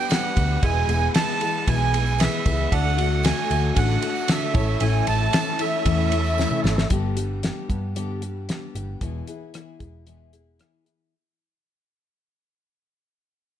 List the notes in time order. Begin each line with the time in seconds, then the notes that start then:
Already playing: B3 D4 G4 B4 G5
0.09 G3 B3 D4 G4 F#5, snare, ride, tambourine
0.23 tambourine
0.35 D2 G3 B3 D4 G4, kick, ride, tambourine
0.49 tambourine
0.62 E1 E2 B2 E3 G#3 B3 E4 G#4 B4 E5 G#5, kick, ride
0.88 E1 E3 G#3 B3 G#4, ride, tambourine
1.14 E3 G#3 B3 G#4 A5, snare, ride, tambourine
1.28 tambourine
1.41 E3 G#3 B3 G#4, ride, tambourine
1.67 B1 E2 B2 E3 G#3 B3 G#4 G#5, kick, ride
1.80 tambourine
1.93 E3 G#3 B3 G#4, ride, tambourine
2.06 tambourine
2.18 E3 G#3 B3 G#4 B4 E5, snare, ride, tambourine
2.32 tambourine
2.45 C#2 E3 G#3 B3 G#4, kick, ride, tambourine
2.71 D2 D3 A3 D4 F#4 A4 D5 F#5, kick, ride
2.97 A3 D4 F#4, ride
3.23 D3 A3 D4 F#4 G#5, snare, ride, tambourine
3.50 D2 A3 D4 F#4, ride, tambourine
3.75 A1 D3 A3 D4 F#4 F#5, kick, ride
3.89 tambourine
4.02 A3 D4 F#4, ride, tambourine
4.16 tambourine
4.28 D3 A3 D4 F#4 E5, snare, ride, tambourine
4.53 A1 A3 C#4 E4 A4 C#5, kick, ride, tambourine
4.68 tambourine
4.80 A1 A2 E3 A3 C#4 E4 G#5, ride
4.94 tambourine
5.07 A1 A3 C#4 E4 A5, ride, tambourine
5.20 tambourine
5.32 E3 A3 C#4 E4, snare, ride, tambourine
5.46 tambourine
5.59 A3 C#4 E4 E5, ride, tambourine
5.73 tambourine
5.85 E2 A2 E3 A3 C#4 E4, kick, ride
5.99 tambourine
6.12 A3 C#4 E4, ride, tambourine
6.24 tambourine
6.38 E3 A3 C#4 E4, snare, tambourine
6.50 mid tom, tambourine
6.64 G#1 A3 C#4 E4, snare, tambourine
6.77 snare, tambourine
6.90 G1 G2 D3 G3 B3 D4 G4, kick, closed hi-hat
7.17 G3 B3 D4 G4, closed hi-hat
7.43 G3 B3 D4 G4, snare, closed hi-hat
7.69 G2 G3 B3 D4 G4, kick, closed hi-hat
7.95 G2 D3 G3 B3 D4 G4, closed hi-hat
8.22 G3 B3 D4 G4, closed hi-hat
8.49 G3 B3 D4 G4, snare, closed hi-hat
8.75 G1 G3 B3 D4 G4, closed hi-hat
9.01 E1 E2 B2 E3 B3 E4 G#4, kick, closed hi-hat
9.27 E3 B3 E4 G#4, closed hi-hat
9.54 E3 B3 E4 G#4, cross-stick, closed hi-hat
9.79 E1 E3 B3 E4 G#4, kick, closed hi-hat
10.06 E2 B2 E3 B3 E4 G#4, closed hi-hat
10.33 E3 B3 E4 G#4, closed hi-hat
10.59 E3 B3 E4 G#4, cross-stick, closed hi-hat
10.85 E3 B3 E4 G#4, closed hi-hat